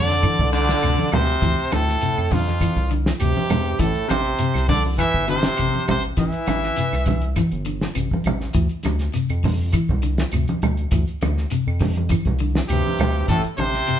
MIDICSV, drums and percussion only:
0, 0, Header, 1, 3, 480
1, 0, Start_track
1, 0, Key_signature, -1, "minor"
1, 0, Tempo, 593472
1, 1151, Time_signature, 4, 2, 24, 8
1, 11320, End_track
2, 0, Start_track
2, 0, Title_t, "Shekere"
2, 189, Note_on_c, 9, 82, 86
2, 270, Note_off_c, 9, 82, 0
2, 436, Note_on_c, 9, 82, 31
2, 517, Note_off_c, 9, 82, 0
2, 671, Note_on_c, 9, 82, 99
2, 752, Note_off_c, 9, 82, 0
2, 907, Note_on_c, 9, 82, 33
2, 988, Note_off_c, 9, 82, 0
2, 1149, Note_on_c, 9, 82, 93
2, 1230, Note_off_c, 9, 82, 0
2, 1396, Note_on_c, 9, 82, 31
2, 1477, Note_off_c, 9, 82, 0
2, 1635, Note_on_c, 9, 82, 104
2, 1716, Note_off_c, 9, 82, 0
2, 1878, Note_on_c, 9, 82, 29
2, 1959, Note_off_c, 9, 82, 0
2, 2113, Note_on_c, 9, 82, 86
2, 2194, Note_off_c, 9, 82, 0
2, 2359, Note_on_c, 9, 82, 34
2, 2440, Note_off_c, 9, 82, 0
2, 2590, Note_on_c, 9, 82, 95
2, 2671, Note_off_c, 9, 82, 0
2, 2834, Note_on_c, 9, 82, 29
2, 2915, Note_off_c, 9, 82, 0
2, 3073, Note_on_c, 9, 82, 93
2, 3154, Note_off_c, 9, 82, 0
2, 3308, Note_on_c, 9, 82, 34
2, 3389, Note_off_c, 9, 82, 0
2, 3552, Note_on_c, 9, 82, 106
2, 3632, Note_off_c, 9, 82, 0
2, 4037, Note_on_c, 9, 82, 94
2, 4118, Note_off_c, 9, 82, 0
2, 4272, Note_on_c, 9, 82, 32
2, 4353, Note_off_c, 9, 82, 0
2, 4516, Note_on_c, 9, 82, 87
2, 4597, Note_off_c, 9, 82, 0
2, 4997, Note_on_c, 9, 82, 87
2, 5078, Note_off_c, 9, 82, 0
2, 5241, Note_on_c, 9, 82, 31
2, 5322, Note_off_c, 9, 82, 0
2, 5484, Note_on_c, 9, 82, 102
2, 5565, Note_off_c, 9, 82, 0
2, 5728, Note_on_c, 9, 82, 31
2, 5809, Note_off_c, 9, 82, 0
2, 5963, Note_on_c, 9, 82, 82
2, 6044, Note_off_c, 9, 82, 0
2, 6208, Note_on_c, 9, 82, 28
2, 6289, Note_off_c, 9, 82, 0
2, 6444, Note_on_c, 9, 82, 86
2, 6525, Note_off_c, 9, 82, 0
2, 6687, Note_on_c, 9, 82, 34
2, 6768, Note_off_c, 9, 82, 0
2, 6920, Note_on_c, 9, 82, 88
2, 7001, Note_off_c, 9, 82, 0
2, 7160, Note_on_c, 9, 82, 31
2, 7241, Note_off_c, 9, 82, 0
2, 7401, Note_on_c, 9, 82, 96
2, 7482, Note_off_c, 9, 82, 0
2, 7645, Note_on_c, 9, 82, 30
2, 7725, Note_off_c, 9, 82, 0
2, 7884, Note_on_c, 9, 82, 93
2, 7964, Note_off_c, 9, 82, 0
2, 8123, Note_on_c, 9, 82, 34
2, 8204, Note_off_c, 9, 82, 0
2, 8358, Note_on_c, 9, 82, 95
2, 8439, Note_off_c, 9, 82, 0
2, 8608, Note_on_c, 9, 82, 32
2, 8689, Note_off_c, 9, 82, 0
2, 8837, Note_on_c, 9, 82, 85
2, 8918, Note_off_c, 9, 82, 0
2, 9078, Note_on_c, 9, 82, 33
2, 9159, Note_off_c, 9, 82, 0
2, 9313, Note_on_c, 9, 82, 93
2, 9394, Note_off_c, 9, 82, 0
2, 9563, Note_on_c, 9, 82, 30
2, 9644, Note_off_c, 9, 82, 0
2, 9802, Note_on_c, 9, 82, 93
2, 9882, Note_off_c, 9, 82, 0
2, 10040, Note_on_c, 9, 82, 33
2, 10121, Note_off_c, 9, 82, 0
2, 10282, Note_on_c, 9, 82, 86
2, 10363, Note_off_c, 9, 82, 0
2, 10517, Note_on_c, 9, 82, 31
2, 10598, Note_off_c, 9, 82, 0
2, 10752, Note_on_c, 9, 82, 95
2, 10833, Note_off_c, 9, 82, 0
2, 10994, Note_on_c, 9, 82, 33
2, 11074, Note_off_c, 9, 82, 0
2, 11239, Note_on_c, 9, 82, 98
2, 11320, Note_off_c, 9, 82, 0
2, 11320, End_track
3, 0, Start_track
3, 0, Title_t, "Drums"
3, 81, Note_on_c, 9, 38, 32
3, 162, Note_off_c, 9, 38, 0
3, 186, Note_on_c, 9, 42, 75
3, 187, Note_on_c, 9, 75, 68
3, 189, Note_on_c, 9, 36, 86
3, 200, Note_on_c, 9, 63, 80
3, 266, Note_off_c, 9, 42, 0
3, 268, Note_off_c, 9, 75, 0
3, 270, Note_off_c, 9, 36, 0
3, 281, Note_off_c, 9, 63, 0
3, 318, Note_on_c, 9, 36, 69
3, 328, Note_on_c, 9, 64, 80
3, 398, Note_off_c, 9, 36, 0
3, 409, Note_off_c, 9, 64, 0
3, 428, Note_on_c, 9, 42, 52
3, 432, Note_on_c, 9, 38, 26
3, 509, Note_off_c, 9, 42, 0
3, 513, Note_off_c, 9, 38, 0
3, 555, Note_on_c, 9, 42, 41
3, 558, Note_on_c, 9, 38, 79
3, 636, Note_off_c, 9, 42, 0
3, 639, Note_off_c, 9, 38, 0
3, 668, Note_on_c, 9, 42, 66
3, 669, Note_on_c, 9, 75, 76
3, 749, Note_off_c, 9, 42, 0
3, 750, Note_off_c, 9, 75, 0
3, 796, Note_on_c, 9, 42, 36
3, 799, Note_on_c, 9, 63, 95
3, 877, Note_off_c, 9, 42, 0
3, 880, Note_off_c, 9, 63, 0
3, 907, Note_on_c, 9, 75, 76
3, 908, Note_on_c, 9, 42, 53
3, 918, Note_on_c, 9, 63, 105
3, 918, Note_on_c, 9, 64, 101
3, 988, Note_off_c, 9, 75, 0
3, 989, Note_off_c, 9, 42, 0
3, 998, Note_off_c, 9, 63, 0
3, 998, Note_off_c, 9, 64, 0
3, 1039, Note_on_c, 9, 42, 33
3, 1120, Note_off_c, 9, 42, 0
3, 1150, Note_on_c, 9, 36, 93
3, 1150, Note_on_c, 9, 42, 71
3, 1230, Note_off_c, 9, 42, 0
3, 1231, Note_off_c, 9, 36, 0
3, 1280, Note_on_c, 9, 42, 36
3, 1361, Note_off_c, 9, 42, 0
3, 1392, Note_on_c, 9, 42, 57
3, 1394, Note_on_c, 9, 75, 77
3, 1395, Note_on_c, 9, 63, 106
3, 1473, Note_off_c, 9, 42, 0
3, 1474, Note_off_c, 9, 75, 0
3, 1475, Note_off_c, 9, 63, 0
3, 1524, Note_on_c, 9, 38, 31
3, 1605, Note_off_c, 9, 38, 0
3, 1626, Note_on_c, 9, 42, 73
3, 1707, Note_off_c, 9, 42, 0
3, 1763, Note_on_c, 9, 75, 71
3, 1843, Note_off_c, 9, 75, 0
3, 1871, Note_on_c, 9, 36, 71
3, 1871, Note_on_c, 9, 46, 65
3, 1874, Note_on_c, 9, 63, 95
3, 1874, Note_on_c, 9, 64, 83
3, 1952, Note_off_c, 9, 36, 0
3, 1952, Note_off_c, 9, 46, 0
3, 1955, Note_off_c, 9, 63, 0
3, 1955, Note_off_c, 9, 64, 0
3, 2000, Note_on_c, 9, 42, 38
3, 2003, Note_on_c, 9, 38, 35
3, 2005, Note_on_c, 9, 63, 72
3, 2081, Note_off_c, 9, 42, 0
3, 2084, Note_off_c, 9, 38, 0
3, 2086, Note_off_c, 9, 63, 0
3, 2110, Note_on_c, 9, 36, 80
3, 2112, Note_on_c, 9, 42, 76
3, 2113, Note_on_c, 9, 75, 68
3, 2191, Note_off_c, 9, 36, 0
3, 2193, Note_off_c, 9, 42, 0
3, 2194, Note_off_c, 9, 75, 0
3, 2235, Note_on_c, 9, 42, 31
3, 2237, Note_on_c, 9, 36, 62
3, 2316, Note_off_c, 9, 42, 0
3, 2318, Note_off_c, 9, 36, 0
3, 2350, Note_on_c, 9, 42, 55
3, 2430, Note_off_c, 9, 42, 0
3, 2476, Note_on_c, 9, 38, 90
3, 2557, Note_off_c, 9, 38, 0
3, 2586, Note_on_c, 9, 42, 84
3, 2589, Note_on_c, 9, 75, 72
3, 2667, Note_off_c, 9, 42, 0
3, 2670, Note_off_c, 9, 75, 0
3, 2726, Note_on_c, 9, 63, 98
3, 2807, Note_off_c, 9, 63, 0
3, 2829, Note_on_c, 9, 42, 61
3, 2831, Note_on_c, 9, 75, 85
3, 2836, Note_on_c, 9, 63, 103
3, 2836, Note_on_c, 9, 64, 94
3, 2910, Note_off_c, 9, 42, 0
3, 2912, Note_off_c, 9, 75, 0
3, 2917, Note_off_c, 9, 63, 0
3, 2917, Note_off_c, 9, 64, 0
3, 3066, Note_on_c, 9, 42, 80
3, 3069, Note_on_c, 9, 36, 86
3, 3146, Note_off_c, 9, 42, 0
3, 3150, Note_off_c, 9, 36, 0
3, 3195, Note_on_c, 9, 42, 36
3, 3276, Note_off_c, 9, 42, 0
3, 3311, Note_on_c, 9, 42, 57
3, 3314, Note_on_c, 9, 38, 30
3, 3317, Note_on_c, 9, 75, 74
3, 3324, Note_on_c, 9, 63, 112
3, 3392, Note_off_c, 9, 42, 0
3, 3395, Note_off_c, 9, 38, 0
3, 3398, Note_off_c, 9, 75, 0
3, 3405, Note_off_c, 9, 63, 0
3, 3437, Note_on_c, 9, 42, 35
3, 3518, Note_off_c, 9, 42, 0
3, 3545, Note_on_c, 9, 42, 80
3, 3626, Note_off_c, 9, 42, 0
3, 3674, Note_on_c, 9, 75, 76
3, 3678, Note_on_c, 9, 42, 35
3, 3681, Note_on_c, 9, 38, 33
3, 3755, Note_off_c, 9, 75, 0
3, 3759, Note_off_c, 9, 42, 0
3, 3762, Note_off_c, 9, 38, 0
3, 3789, Note_on_c, 9, 46, 67
3, 3791, Note_on_c, 9, 36, 76
3, 3797, Note_on_c, 9, 63, 90
3, 3797, Note_on_c, 9, 64, 85
3, 3870, Note_off_c, 9, 46, 0
3, 3872, Note_off_c, 9, 36, 0
3, 3878, Note_off_c, 9, 63, 0
3, 3878, Note_off_c, 9, 64, 0
3, 3931, Note_on_c, 9, 63, 75
3, 4012, Note_off_c, 9, 63, 0
3, 4031, Note_on_c, 9, 42, 79
3, 4032, Note_on_c, 9, 36, 76
3, 4034, Note_on_c, 9, 75, 73
3, 4112, Note_off_c, 9, 42, 0
3, 4113, Note_off_c, 9, 36, 0
3, 4115, Note_off_c, 9, 75, 0
3, 4160, Note_on_c, 9, 36, 73
3, 4241, Note_off_c, 9, 36, 0
3, 4269, Note_on_c, 9, 42, 50
3, 4272, Note_on_c, 9, 38, 27
3, 4349, Note_off_c, 9, 42, 0
3, 4353, Note_off_c, 9, 38, 0
3, 4387, Note_on_c, 9, 42, 42
3, 4391, Note_on_c, 9, 38, 95
3, 4468, Note_off_c, 9, 42, 0
3, 4472, Note_off_c, 9, 38, 0
3, 4504, Note_on_c, 9, 42, 72
3, 4509, Note_on_c, 9, 75, 78
3, 4585, Note_off_c, 9, 42, 0
3, 4590, Note_off_c, 9, 75, 0
3, 4635, Note_on_c, 9, 42, 33
3, 4647, Note_on_c, 9, 63, 84
3, 4716, Note_off_c, 9, 42, 0
3, 4728, Note_off_c, 9, 63, 0
3, 4752, Note_on_c, 9, 42, 54
3, 4756, Note_on_c, 9, 75, 77
3, 4762, Note_on_c, 9, 63, 110
3, 4762, Note_on_c, 9, 64, 94
3, 4833, Note_off_c, 9, 42, 0
3, 4836, Note_off_c, 9, 75, 0
3, 4843, Note_off_c, 9, 63, 0
3, 4843, Note_off_c, 9, 64, 0
3, 4879, Note_on_c, 9, 42, 33
3, 4960, Note_off_c, 9, 42, 0
3, 4988, Note_on_c, 9, 42, 59
3, 4994, Note_on_c, 9, 36, 94
3, 5069, Note_off_c, 9, 42, 0
3, 5074, Note_off_c, 9, 36, 0
3, 5114, Note_on_c, 9, 42, 38
3, 5195, Note_off_c, 9, 42, 0
3, 5230, Note_on_c, 9, 42, 57
3, 5233, Note_on_c, 9, 38, 30
3, 5238, Note_on_c, 9, 75, 73
3, 5239, Note_on_c, 9, 63, 103
3, 5311, Note_off_c, 9, 42, 0
3, 5314, Note_off_c, 9, 38, 0
3, 5319, Note_off_c, 9, 75, 0
3, 5320, Note_off_c, 9, 63, 0
3, 5364, Note_on_c, 9, 38, 30
3, 5445, Note_off_c, 9, 38, 0
3, 5471, Note_on_c, 9, 42, 73
3, 5552, Note_off_c, 9, 42, 0
3, 5603, Note_on_c, 9, 38, 30
3, 5605, Note_on_c, 9, 75, 71
3, 5684, Note_off_c, 9, 38, 0
3, 5686, Note_off_c, 9, 75, 0
3, 5707, Note_on_c, 9, 42, 58
3, 5714, Note_on_c, 9, 36, 72
3, 5723, Note_on_c, 9, 63, 80
3, 5723, Note_on_c, 9, 64, 83
3, 5788, Note_off_c, 9, 42, 0
3, 5795, Note_off_c, 9, 36, 0
3, 5804, Note_off_c, 9, 63, 0
3, 5804, Note_off_c, 9, 64, 0
3, 5835, Note_on_c, 9, 42, 36
3, 5916, Note_off_c, 9, 42, 0
3, 5952, Note_on_c, 9, 42, 75
3, 5955, Note_on_c, 9, 75, 69
3, 5956, Note_on_c, 9, 36, 76
3, 5967, Note_on_c, 9, 63, 88
3, 6033, Note_off_c, 9, 42, 0
3, 6035, Note_off_c, 9, 75, 0
3, 6037, Note_off_c, 9, 36, 0
3, 6048, Note_off_c, 9, 63, 0
3, 6079, Note_on_c, 9, 42, 32
3, 6160, Note_off_c, 9, 42, 0
3, 6187, Note_on_c, 9, 42, 58
3, 6268, Note_off_c, 9, 42, 0
3, 6320, Note_on_c, 9, 38, 78
3, 6401, Note_off_c, 9, 38, 0
3, 6430, Note_on_c, 9, 42, 72
3, 6433, Note_on_c, 9, 75, 65
3, 6511, Note_off_c, 9, 42, 0
3, 6514, Note_off_c, 9, 75, 0
3, 6562, Note_on_c, 9, 36, 70
3, 6579, Note_on_c, 9, 63, 98
3, 6643, Note_off_c, 9, 36, 0
3, 6660, Note_off_c, 9, 63, 0
3, 6665, Note_on_c, 9, 42, 56
3, 6681, Note_on_c, 9, 75, 73
3, 6689, Note_on_c, 9, 63, 103
3, 6689, Note_on_c, 9, 64, 91
3, 6746, Note_off_c, 9, 42, 0
3, 6762, Note_off_c, 9, 75, 0
3, 6770, Note_off_c, 9, 63, 0
3, 6770, Note_off_c, 9, 64, 0
3, 6798, Note_on_c, 9, 38, 31
3, 6879, Note_off_c, 9, 38, 0
3, 6901, Note_on_c, 9, 42, 73
3, 6913, Note_on_c, 9, 36, 92
3, 6982, Note_off_c, 9, 42, 0
3, 6994, Note_off_c, 9, 36, 0
3, 7030, Note_on_c, 9, 42, 38
3, 7111, Note_off_c, 9, 42, 0
3, 7141, Note_on_c, 9, 42, 61
3, 7144, Note_on_c, 9, 38, 30
3, 7157, Note_on_c, 9, 75, 68
3, 7162, Note_on_c, 9, 63, 98
3, 7222, Note_off_c, 9, 42, 0
3, 7225, Note_off_c, 9, 38, 0
3, 7238, Note_off_c, 9, 75, 0
3, 7243, Note_off_c, 9, 63, 0
3, 7272, Note_on_c, 9, 42, 38
3, 7275, Note_on_c, 9, 38, 29
3, 7353, Note_off_c, 9, 42, 0
3, 7356, Note_off_c, 9, 38, 0
3, 7388, Note_on_c, 9, 42, 69
3, 7469, Note_off_c, 9, 42, 0
3, 7517, Note_on_c, 9, 42, 38
3, 7522, Note_on_c, 9, 75, 73
3, 7598, Note_off_c, 9, 42, 0
3, 7603, Note_off_c, 9, 75, 0
3, 7631, Note_on_c, 9, 46, 78
3, 7634, Note_on_c, 9, 36, 72
3, 7645, Note_on_c, 9, 63, 90
3, 7645, Note_on_c, 9, 64, 91
3, 7712, Note_off_c, 9, 46, 0
3, 7715, Note_off_c, 9, 36, 0
3, 7726, Note_off_c, 9, 63, 0
3, 7726, Note_off_c, 9, 64, 0
3, 7865, Note_on_c, 9, 42, 81
3, 7871, Note_on_c, 9, 75, 77
3, 7873, Note_on_c, 9, 36, 85
3, 7946, Note_off_c, 9, 42, 0
3, 7952, Note_off_c, 9, 75, 0
3, 7954, Note_off_c, 9, 36, 0
3, 8001, Note_on_c, 9, 36, 66
3, 8012, Note_on_c, 9, 64, 84
3, 8082, Note_off_c, 9, 36, 0
3, 8093, Note_off_c, 9, 64, 0
3, 8105, Note_on_c, 9, 42, 56
3, 8186, Note_off_c, 9, 42, 0
3, 8232, Note_on_c, 9, 42, 41
3, 8235, Note_on_c, 9, 38, 86
3, 8313, Note_off_c, 9, 42, 0
3, 8316, Note_off_c, 9, 38, 0
3, 8344, Note_on_c, 9, 42, 66
3, 8353, Note_on_c, 9, 75, 75
3, 8425, Note_off_c, 9, 42, 0
3, 8434, Note_off_c, 9, 75, 0
3, 8473, Note_on_c, 9, 42, 38
3, 8484, Note_on_c, 9, 63, 97
3, 8554, Note_off_c, 9, 42, 0
3, 8565, Note_off_c, 9, 63, 0
3, 8589, Note_on_c, 9, 42, 49
3, 8597, Note_on_c, 9, 63, 99
3, 8597, Note_on_c, 9, 64, 97
3, 8603, Note_on_c, 9, 75, 73
3, 8670, Note_off_c, 9, 42, 0
3, 8678, Note_off_c, 9, 63, 0
3, 8678, Note_off_c, 9, 64, 0
3, 8684, Note_off_c, 9, 75, 0
3, 8712, Note_on_c, 9, 42, 34
3, 8793, Note_off_c, 9, 42, 0
3, 8823, Note_on_c, 9, 42, 68
3, 8831, Note_on_c, 9, 36, 100
3, 8904, Note_off_c, 9, 42, 0
3, 8912, Note_off_c, 9, 36, 0
3, 8957, Note_on_c, 9, 42, 34
3, 9038, Note_off_c, 9, 42, 0
3, 9068, Note_on_c, 9, 42, 53
3, 9078, Note_on_c, 9, 63, 100
3, 9081, Note_on_c, 9, 75, 68
3, 9149, Note_off_c, 9, 42, 0
3, 9159, Note_off_c, 9, 63, 0
3, 9161, Note_off_c, 9, 75, 0
3, 9199, Note_on_c, 9, 38, 32
3, 9280, Note_off_c, 9, 38, 0
3, 9303, Note_on_c, 9, 42, 73
3, 9384, Note_off_c, 9, 42, 0
3, 9445, Note_on_c, 9, 75, 68
3, 9526, Note_off_c, 9, 75, 0
3, 9546, Note_on_c, 9, 46, 76
3, 9549, Note_on_c, 9, 36, 79
3, 9549, Note_on_c, 9, 38, 36
3, 9559, Note_on_c, 9, 63, 94
3, 9559, Note_on_c, 9, 64, 91
3, 9627, Note_off_c, 9, 46, 0
3, 9630, Note_off_c, 9, 36, 0
3, 9630, Note_off_c, 9, 38, 0
3, 9640, Note_off_c, 9, 63, 0
3, 9640, Note_off_c, 9, 64, 0
3, 9667, Note_on_c, 9, 42, 41
3, 9682, Note_on_c, 9, 63, 76
3, 9748, Note_off_c, 9, 42, 0
3, 9763, Note_off_c, 9, 63, 0
3, 9779, Note_on_c, 9, 42, 81
3, 9787, Note_on_c, 9, 36, 84
3, 9799, Note_on_c, 9, 75, 79
3, 9800, Note_on_c, 9, 63, 82
3, 9860, Note_off_c, 9, 42, 0
3, 9868, Note_off_c, 9, 36, 0
3, 9880, Note_off_c, 9, 75, 0
3, 9881, Note_off_c, 9, 63, 0
3, 9907, Note_on_c, 9, 42, 29
3, 9914, Note_on_c, 9, 36, 64
3, 9925, Note_on_c, 9, 64, 75
3, 9988, Note_off_c, 9, 42, 0
3, 9995, Note_off_c, 9, 36, 0
3, 10006, Note_off_c, 9, 64, 0
3, 10017, Note_on_c, 9, 42, 52
3, 10098, Note_off_c, 9, 42, 0
3, 10153, Note_on_c, 9, 38, 96
3, 10234, Note_off_c, 9, 38, 0
3, 10261, Note_on_c, 9, 42, 70
3, 10274, Note_on_c, 9, 75, 65
3, 10342, Note_off_c, 9, 42, 0
3, 10355, Note_off_c, 9, 75, 0
3, 10407, Note_on_c, 9, 63, 85
3, 10488, Note_off_c, 9, 63, 0
3, 10499, Note_on_c, 9, 42, 58
3, 10514, Note_on_c, 9, 75, 82
3, 10520, Note_on_c, 9, 63, 117
3, 10520, Note_on_c, 9, 64, 88
3, 10580, Note_off_c, 9, 42, 0
3, 10594, Note_off_c, 9, 75, 0
3, 10601, Note_off_c, 9, 63, 0
3, 10601, Note_off_c, 9, 64, 0
3, 10739, Note_on_c, 9, 42, 67
3, 10742, Note_on_c, 9, 38, 28
3, 10744, Note_on_c, 9, 36, 101
3, 10819, Note_off_c, 9, 42, 0
3, 10823, Note_off_c, 9, 38, 0
3, 10825, Note_off_c, 9, 36, 0
3, 10869, Note_on_c, 9, 42, 42
3, 10950, Note_off_c, 9, 42, 0
3, 10976, Note_on_c, 9, 42, 58
3, 10987, Note_on_c, 9, 75, 71
3, 10996, Note_on_c, 9, 63, 100
3, 11057, Note_off_c, 9, 42, 0
3, 11067, Note_off_c, 9, 75, 0
3, 11077, Note_off_c, 9, 63, 0
3, 11110, Note_on_c, 9, 42, 42
3, 11113, Note_on_c, 9, 38, 30
3, 11191, Note_off_c, 9, 42, 0
3, 11194, Note_off_c, 9, 38, 0
3, 11217, Note_on_c, 9, 42, 83
3, 11297, Note_off_c, 9, 42, 0
3, 11320, End_track
0, 0, End_of_file